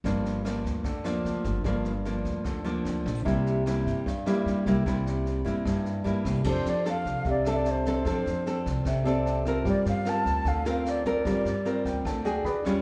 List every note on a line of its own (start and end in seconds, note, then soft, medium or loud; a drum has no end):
0.04 0.60 G1 medium
0.04 0.83 G2 soft
0.04 0.42 F3 soft
0.04 0.42 A#3 soft
0.04 0.42 D4 soft
0.04 kick soft
0.04 snare soft
0.25 snare soft
0.45 0.85 F3 soft
0.45 0.85 A#3 soft
0.45 0.85 D4 soft
0.45 cross-stick soft
0.45 snare soft
0.65 1.21 D2 medium
0.65 kick soft
0.65 snare soft
0.84 1.63 D3 soft
0.84 kick soft
0.84 snare soft
1.04 1.62 F3 medium
1.04 1.62 A#3 medium
1.04 1.62 D4 medium
1.04 cross-stick medium
1.04 snare soft
1.25 1.43 D2 medium
1.25 snare soft
1.44 1.63 G1 medium
1.44 kick soft
1.44 snare soft
1.64 2.21 G1 medium
1.64 2.43 G2 soft
1.64 1.91 F3 soft
1.64 1.91 A#3 soft
1.64 1.91 D4 soft
1.64 kick soft
1.64 cross-stick soft
1.64 snare soft
1.84 snare soft
2.05 2.62 F3 soft
2.05 2.62 A#3 soft
2.05 2.63 D4 medium
2.05 snare soft
2.25 2.81 D2 medium
2.25 kick soft
2.25 snare soft
2.44 3.23 D3 soft
2.44 kick soft
2.44 cross-stick soft
2.44 snare soft
2.65 3.22 F3 medium
2.65 3.22 A#3 medium
2.65 3.22 D4 medium
2.65 snare soft
2.85 3.04 D2 medium
2.85 snare soft
3.06 3.24 A#1 medium
3.06 kick soft
3.06 cross-stick soft
3.06 snare soft
3.25 3.82 C2 medium
3.25 4.03 C3 soft
3.25 3.62 G3 soft
3.25 3.62 A#3 soft
3.25 3.62 E4 medium
3.25 kick soft
3.25 snare soft
3.46 snare soft
3.66 4.06 G3 soft
3.66 4.06 A#3 soft
3.66 4.06 E4 soft
3.66 cross-stick soft
3.66 snare soft
3.86 4.42 G2 medium
3.86 kick soft
3.86 snare soft
4.06 4.84 G2 soft
4.06 kick soft
4.06 snare soft
4.26 4.63 G3 medium
4.26 4.63 A#3 medium
4.26 4.63 E4 medium
4.26 cross-stick medium
4.26 snare soft
4.46 4.64 G2 medium
4.46 snare soft
4.66 4.84 C2 medium
4.66 4.83 G3 medium
4.66 4.83 A#3 medium
4.66 4.84 E4 medium
4.66 kick soft
4.66 snare soft
4.86 5.42 C2 medium
4.86 5.64 C3 soft
4.86 5.43 G3 soft
4.86 5.43 A#3 soft
4.86 5.43 E4 soft
4.86 kick soft
4.86 cross-stick soft
4.86 snare soft
5.06 snare soft
5.26 snare soft
5.45 6.02 G2 medium
5.45 6.02 G3 soft
5.45 6.02 A#3 soft
5.45 6.02 E4 medium
5.45 kick soft
5.45 snare soft
5.65 6.44 G2 soft
5.65 kick medium
5.65 cross-stick medium
5.65 snare soft
5.85 snare soft
6.04 6.24 G2 medium
6.04 6.42 G3 soft
6.04 6.42 A#3 soft
6.04 6.43 E4 soft
6.04 snare soft
6.25 6.44 C2 medium
6.25 kick soft
6.25 cross-stick medium
6.25 snare soft
6.43 6.64 F2 medium
6.43 7.24 F3 soft
6.43 6.71 C4 soft
6.43 6.71 D4 soft
6.43 9.00 G4 soft
6.43 9.01 A4 soft
6.43 6.72 A4 soft
6.43 kick soft
6.43 snare soft
6.43 crash medium
6.47 9.03 C5 soft
6.47 6.71 C5 medium
6.47 9.04 D5 soft
6.65 7.03 F2 medium
6.65 snare soft
6.69 6.88 D5 medium
6.85 7.26 C4 soft
6.85 7.26 D4 soft
6.85 7.26 A4 medium
6.85 7.25 F5 medium
6.85 cross-stick soft
6.85 snare soft
7.05 7.24 C2 medium
7.05 kick soft
7.05 snare soft
7.24 8.02 C2 medium
7.24 8.04 C3 soft
7.24 kick medium
7.24 snare soft
7.30 7.47 D5 medium
7.45 7.83 C4 medium
7.45 7.83 D4 medium
7.45 7.83 A4 medium
7.45 cross-stick medium
7.45 snare soft
7.51 7.57 E5 medium
7.56 7.73 D5 medium
7.64 snare soft
7.71 7.88 C5 medium
7.85 8.03 C4 medium
7.85 8.03 D4 soft
7.85 8.04 A4 medium
7.85 kick soft
7.85 snare soft
7.92 8.65 C5 medium
7.92 7.97 D5 medium
8.05 8.24 F2 medium
8.05 8.84 F3 soft
8.05 8.43 C4 soft
8.05 8.43 D4 soft
8.05 8.43 A4 soft
8.05 kick medium
8.05 cross-stick soft
8.05 snare soft
8.26 8.63 F2 medium
8.26 snare soft
8.46 9.03 C4 soft
8.46 9.03 D4 soft
8.46 9.03 A4 soft
8.46 snare soft
8.66 8.84 C2 medium
8.66 kick soft
8.66 snare soft
8.85 9.62 C2 medium
8.85 9.65 C3 soft
8.85 kick medium
8.85 cross-stick medium
8.85 snare soft
9.04 9.42 C4 medium
9.04 9.43 D4 medium
9.04 9.65 G4 soft
9.04 9.66 A4 soft
9.04 9.43 A4 medium
9.04 9.66 C5 soft
9.04 9.67 D5 medium
9.04 snare soft
9.26 9.63 A5 soft
9.26 snare soft
9.45 10.03 C4 medium
9.45 10.03 F4 soft
9.45 10.04 A#4 medium
9.45 kick soft
9.45 cross-stick medium
9.45 snare soft
9.63 9.84 G2 medium
9.63 10.44 G3 soft
9.63 12.41 F4 soft
9.63 12.42 A#4 soft
9.63 kick medium
9.63 snare soft
9.68 12.43 C5 soft
9.68 9.86 D5 medium
9.85 10.23 G2 medium
9.85 10.11 F5 medium
9.85 snare soft
10.05 10.62 C4 soft
10.05 10.63 F4 soft
10.05 10.63 A#4 soft
10.05 cross-stick medium
10.05 snare soft
10.09 10.50 A5 medium
10.25 10.44 D2 medium
10.25 kick soft
10.25 snare soft
10.45 11.21 D2 medium
10.45 11.23 D3 medium
10.45 10.67 F5 medium
10.45 kick medium
10.45 snare soft
10.65 11.03 C4 medium
10.65 11.03 F4 medium
10.65 11.03 A#4 medium
10.65 10.86 F5 medium
10.65 cross-stick medium
10.65 snare soft
10.85 11.06 D5 medium
10.85 snare soft
11.05 11.23 C4 medium
11.05 11.23 F4 medium
11.05 11.23 A#4 medium
11.05 11.83 D5 medium
11.05 kick soft
11.05 snare soft
11.25 11.44 G2 medium
11.25 12.04 G3 soft
11.25 11.52 C4 soft
11.25 11.52 F4 soft
11.25 11.52 A#4 medium
11.25 kick soft
11.25 cross-stick medium
11.25 snare soft
11.45 11.83 G2 medium
11.45 snare soft
11.65 12.22 C4 soft
11.65 12.23 F4 soft
11.65 12.23 A#4 soft
11.65 snare soft
11.85 12.04 D2 medium
11.85 12.04 G5 soft
11.85 kick soft
11.85 snare soft
12.05 12.42 D2 medium
12.05 12.44 D3 soft
12.05 12.25 A5 soft
12.05 kick medium
12.05 cross-stick medium
12.05 snare soft
12.25 12.62 D4 medium
12.25 12.62 F#4 medium
12.25 12.63 G#4 medium
12.25 12.44 G5 medium
12.25 snare soft
12.44 12.82 E2 medium
12.44 12.82 G#4 soft
12.44 12.82 B4 soft
12.44 12.82 D5 medium
12.44 12.82 B5 medium
12.44 snare soft
12.65 12.82 G3 medium
12.65 12.82 C#4 medium
12.65 12.82 F4 medium
12.65 kick soft
12.65 cross-stick medium
12.65 snare soft